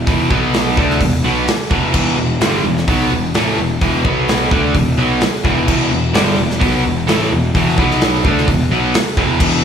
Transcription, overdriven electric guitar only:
0.07 E2 B2 E3
0.31 B2 F#3 B3
0.77 D3 A3 D4
1.01 E2 B2
1.25 B2 F#3 B3
1.48 muted overdriven electric guitar stroke
1.71 E2 B2 E3
1.94 E2 B2 E3
2.18 E2 B2
2.41 G2 D3 G3
2.64 E2 B2
2.88 B2 F#3 B3
3.11 E2 B2
3.35 A2 E3 A3
3.59 E2 B2
3.81 E2 B2 E3
4.05 B2 F#3 B3
4.52 D3 A3 D4
4.75 E2 B2
4.97 B2 F#3 B3
5.22 muted overdriven electric guitar stroke
5.44 E2 B2 E3
5.68 E2 B2 E3
5.91 E2 B2
6.14 G2 D3 G3
6.38 E2 B2
6.60 B2 F#3 B3
6.83 E2 B2
7.07 A2 E3 A3
7.32 E2 B2
7.55 E2 B2 E3
7.78 B2 F#3 B3
8.26 D3 A3 D4
8.49 E2 B2
8.71 B2 F#3 B3
8.95 muted overdriven electric guitar stroke
9.18 E2 B2 E3
9.40 E2 B2 E3

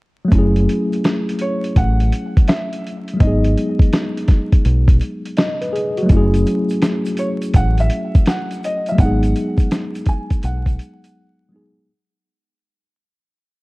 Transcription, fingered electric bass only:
0.32 F#1
1.77 A1
3.21 G#1
4.66 B1
6.10 F#1
7.55 A1
8.99 G#1
10.44 B1

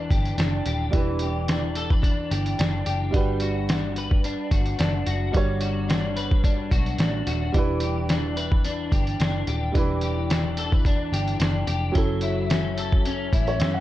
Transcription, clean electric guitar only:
Already playing: E3 D4 G4 B4
0.11 G4
0.38 D4
0.67 G4
0.94 E3
1.22 G4
1.49 D4
1.76 A4
1.91 B4
2.02 D4
2.31 G4
2.59 D4
2.86 G4
3.14 G3
3.42 F#4
3.69 D4
3.98 B4
4.25 D4
4.52 F#4
4.79 D4
5.07 F#4
5.34 G3
5.61 F#4
5.89 D4
6.16 B4
6.44 D4
6.71 F#4
6.99 D4
7.27 F#4
7.55 E3
7.84 G4
8.11 D4
8.37 B4
8.65 D4
8.93 G4
9.20 D4
9.48 G4
9.75 E3
10.03 G4
10.31 D4
10.59 A4
10.73 B4
10.86 D4
11.13 G4
11.39 D4
11.67 G4
11.95 F#3
12.23 E4
12.51 C#4
12.78 A4
13.06 C#4
13.34 E4
13.61 C#4

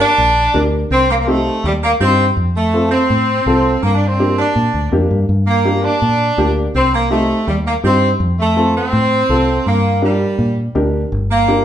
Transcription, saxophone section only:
0.00 D4
0.91 C4
1.09 A#3
1.21 A#3
1.28 A3
1.65 G3
1.83 A#3
2.01 C4
2.56 A3
2.91 C4
3.83 A#3
3.95 D4
4.07 C4
4.37 D4
5.47 A#3
5.84 D4
6.75 C4
6.93 A#3
7.11 A3
7.48 G3
7.66 A#3
7.85 C4
8.40 A3
8.75 C4
9.67 A#3
10.04 G3
11.30 A#3

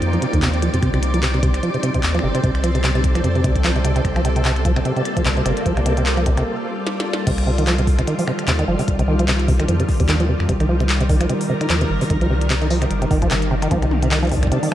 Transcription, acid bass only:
0.13 F3
0.22 C3
0.34 D#3
0.42 C3
0.63 F3
0.74 C3
0.83 C3
0.94 C3
1.14 F3
1.23 C3
1.34 C3
1.43 C3
1.63 F3
1.74 C3
1.83 C3
1.94 C3
2.15 F3
2.23 C3
2.35 C3
2.43 C3
2.64 F3
2.75 C3
2.84 C3
2.95 C3
3.15 F3
3.24 C3
3.35 C3
3.44 C3
3.64 F3
3.76 C3
3.85 C3
3.96 C3
4.16 F3
4.25 C3
4.36 C3
4.45 C3
4.65 F3
4.76 C3
4.85 C3
4.96 C3
5.17 F3
5.26 C3
5.37 C3
5.46 C3
5.66 F3
5.77 C3
5.86 C3
5.97 C3
6.17 F3
6.26 C3
6.37 C3
7.27 C3
7.47 C3
7.58 D#3
7.67 F3
7.78 C3
7.99 C3
8.08 D#3
8.19 F3
8.28 C3
8.48 C3
8.59 D#3
8.68 F3
8.79 C3
8.99 C3
9.08 D#3
9.19 F3
9.28 C3
9.48 C3
9.60 D#3
9.69 F3
9.80 C3
10.00 C3
10.09 D#3
10.20 F3
10.29 C3
10.49 C3
10.60 D#3
10.69 F3
10.80 C3
11.01 C3
11.09 D#3
11.21 F3
11.30 C3
11.50 C3
11.61 D#3
11.70 F3
11.81 C3
12.01 C3
12.10 D#3
12.21 F3
12.30 C3
12.50 C3
12.62 D#3
12.70 F3
12.82 C3
13.02 C3
13.11 D#3
13.22 F3
13.31 C3
13.51 C3
13.62 D#3
13.71 F3
13.82 C3
14.03 C3
14.11 D#3
14.23 F3
14.31 C3
14.52 C3
14.63 D#3

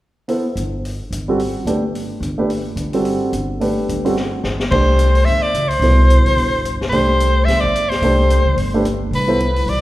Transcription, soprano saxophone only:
4.71 C5
5.25 E5
5.42 D5
5.68 C5
6.90 C5
7.45 E5
7.60 D5
7.89 C5
9.15 B4
9.69 D5

